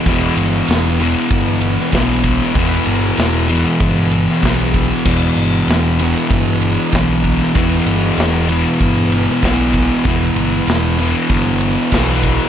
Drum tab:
CC |----------------|----------------|x---------------|----------------|
RD |x-x-x-x-x-x-x-x-|x-x-x-x-x-x-x-x-|--x-x-x-x-x-x-x-|x-x-x-x-x-x-x-x-|
SD |----o------oo--o|----o------oo---|----o-------o--o|----o------oo-o-|
BD |o-------o---o-o-|o-------o---o-o-|o-------o---o-o-|o-------o---o-o-|

CC |----------------|
RD |x-x-x-x-x-x-x-x-|
SD |----o-------o---|
BD |o-------o---o-o-|